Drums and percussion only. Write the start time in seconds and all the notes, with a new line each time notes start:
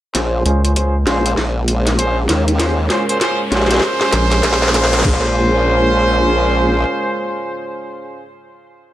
0.15 kick, snare, closed hi-hat
0.46 closed hi-hat
0.65 closed hi-hat
0.76 kick, closed hi-hat
1.07 snare, closed hi-hat
1.26 closed hi-hat
1.37 kick, snare
1.68 closed hi-hat
1.87 snare, closed hi-hat
1.99 kick, closed hi-hat
2.29 snare, closed hi-hat
2.48 closed hi-hat
2.60 kick, snare, closed hi-hat
2.90 snare, closed hi-hat
3.09 closed hi-hat
3.21 kick, snare, closed hi-hat
3.52 snare, closed hi-hat
3.57 snare
3.62 snare
3.66 snare
3.71 snare, closed hi-hat
3.74 snare
3.76 snare
3.79 snare
3.82 kick, snare
4.01 snare
4.13 snare, closed hi-hat
4.32 snare, closed hi-hat
4.43 kick, snare, closed hi-hat
4.53 snare
4.62 snare
4.68 snare
4.74 snare, closed hi-hat
4.84 snare
4.93 snare, closed hi-hat
4.99 snare
5.03 kick, snare, crash
5.08 snare
5.14 snare
5.20 snare
5.25 snare